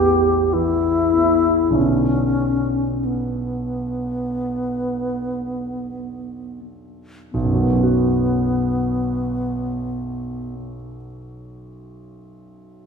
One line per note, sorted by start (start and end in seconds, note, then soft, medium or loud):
0.00 0.30 E2 soft
0.00 0.54 E3 soft
0.00 1.13 B3 soft
0.00 0.55 G4 medium
0.53 1.50 E3 soft
0.53 1.76 E4 medium
1.13 1.71 B3 soft
1.70 7.27 B1 soft
1.70 7.28 D3 soft
1.70 7.28 B3 soft
1.70 7.29 C#4 soft
1.75 3.07 C#4 medium
3.05 6.59 B3 soft
7.32 10.56 B1 soft
7.32 10.54 B3 medium
7.44 10.66 F#2 soft
7.53 10.75 F#3 soft
7.63 10.85 B3 soft
7.73 10.95 C#4 soft
7.83 11.05 F#4 soft